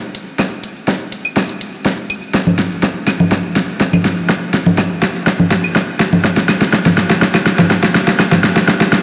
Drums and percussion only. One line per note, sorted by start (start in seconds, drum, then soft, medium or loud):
0.15 closed hi-hat loud
0.15 shaker medium
0.27 shaker medium
0.39 kick loud
0.39 snare medium
0.39 claves medium
0.39 shaker medium
0.64 closed hi-hat loud
0.64 shaker medium
0.76 shaker medium
0.88 kick loud
0.88 snare medium
0.88 shaker medium
1.12 closed hi-hat loud
1.12 shaker medium
1.25 claves medium
1.25 shaker medium
1.37 kick loud
1.37 snare medium
1.37 shaker medium
1.49 closed hi-hat medium
1.61 closed hi-hat loud
1.61 shaker medium
1.74 shaker medium
1.85 kick loud
1.85 snare medium
1.85 shaker medium
2.10 closed hi-hat loud
2.10 claves medium
2.10 shaker medium
2.23 shaker medium
2.34 kick loud
2.34 snare medium
2.34 shaker medium
2.47 low conga medium
2.59 snare medium
2.59 closed hi-hat loud
2.59 shaker medium
2.71 shaker medium
2.83 kick loud
2.83 snare medium
2.83 shaker medium
3.07 snare medium
3.07 closed hi-hat loud
3.07 claves medium
3.07 shaker medium
3.20 low conga medium
3.20 shaker medium
3.32 kick loud
3.32 snare medium
3.32 shaker medium
3.56 snare medium
3.56 closed hi-hat loud
3.56 shaker medium
3.69 shaker medium
3.81 kick loud
3.81 snare medium
3.81 shaker medium
3.93 low conga loud
3.93 claves medium
4.05 snare medium
4.05 closed hi-hat loud
4.05 shaker medium
4.18 shaker medium
4.29 kick loud
4.29 snare medium
4.29 shaker medium
4.54 snare medium
4.54 closed hi-hat loud
4.54 shaker medium
4.66 low conga loud
4.66 shaker medium
4.78 kick loud
4.78 snare medium
4.78 claves medium
4.78 shaker medium
5.03 snare medium
5.03 closed hi-hat loud
5.03 shaker medium
5.15 shaker medium
5.27 kick loud
5.27 snare medium
5.27 shaker medium
5.40 low conga loud
5.51 snare medium
5.51 closed hi-hat loud
5.51 shaker medium
5.64 claves medium
5.64 shaker medium
5.76 kick loud
5.76 snare medium
5.76 shaker medium
6.00 snare medium
6.00 closed hi-hat loud
6.00 shaker medium
6.13 low conga medium
6.13 shaker medium
6.25 kick loud
6.25 snare medium
6.25 shaker medium
6.37 snare medium
6.49 snare medium
6.49 closed hi-hat loud
6.49 claves medium
6.49 shaker medium
6.62 snare medium
6.62 shaker medium
6.73 kick loud
6.73 snare medium
6.73 shaker medium
6.86 snare medium
6.86 low conga medium
6.98 snare medium
6.98 closed hi-hat loud
6.98 shaker medium
7.10 snare medium
7.10 shaker medium
7.22 kick loud
7.22 snare loud
7.22 shaker medium
7.35 snare medium
7.35 claves medium
7.47 snare medium
7.47 closed hi-hat loud
7.47 shaker medium
7.59 snare medium
7.59 low conga loud
7.59 shaker medium
7.71 kick loud
7.71 snare loud
7.71 shaker medium
7.83 snare medium
7.95 snare loud
7.95 closed hi-hat loud
7.95 shaker medium
8.08 snare medium
8.08 shaker medium
8.20 kick loud
8.20 snare loud
8.20 claves medium
8.20 shaker medium
8.32 snare medium
8.32 low conga medium
8.44 snare loud
8.44 closed hi-hat loud
8.44 shaker medium
8.57 snare medium
8.57 shaker medium
8.68 kick loud
8.68 snare loud
8.68 shaker medium
8.81 snare medium
8.93 snare loud
8.93 closed hi-hat loud
8.93 shaker medium